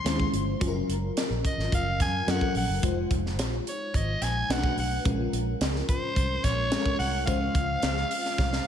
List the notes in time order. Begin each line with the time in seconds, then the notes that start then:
Already playing: F3 G#3 C#4 C5 C6
0.04 D#2 G#3 C#4 E4 C5, snare, closed hi-hat
0.12 F4
0.20 kick
0.33 G1, closed hi-hat
0.60 F#1 F#3 C#4 F4 G#4, kick, closed hi-hat
0.68 A#4
0.89 F#1, closed hi-hat
1.17 snare, closed hi-hat
1.30 A#1
1.45 D#5, kick, closed hi-hat
1.58 G#1, snare
1.72 F#1 F5, kick, closed hi-hat
2.00 F#2 G#5, kick, snare, closed hi-hat
2.27 F#2 F#3 C#4 F4 A4 F#5, snare, closed hi-hat
2.35 A#4
2.41 kick
2.55 A#1 F#5, open hi-hat
2.68 F#1
2.82 F1 G#3 D#4 F4 C5, kick, closed hi-hat
3.11 F1, kick, closed hi-hat
3.26 snare
3.39 A#1, snare, closed hi-hat
3.67 C#5, closed hi-hat
3.94 G#1 D#5, kick, closed hi-hat
4.21 A#1 G#5, snare, closed hi-hat
4.49 B1 A3 C#4 F#4 B4 F#5, snare, closed hi-hat
4.56 D4
4.63 kick
4.77 B1 F#5, open hi-hat
5.04 A#1 G#3 C#4 F4 A#4, kick, closed hi-hat
5.33 A#1, closed hi-hat
5.61 C#2, snare, closed hi-hat
5.76 snare
5.89 C5, kick, closed hi-hat
6.16 C2, kick, closed hi-hat
6.44 A#1 C#5, kick, snare, closed hi-hat
6.71 G#3 C#4 F4 A4, snare, closed hi-hat
6.78 A#4
6.86 kick
6.99 C2 F#5, open hi-hat
7.26 C#2 G#3 C#4 F4 C5 F5, kick, closed hi-hat
7.55 C#2, kick, closed hi-hat
7.82 C#2, snare, closed hi-hat
7.97 snare
8.11 open hi-hat
8.25 snare
8.38 C2, kick, snare
8.53 snare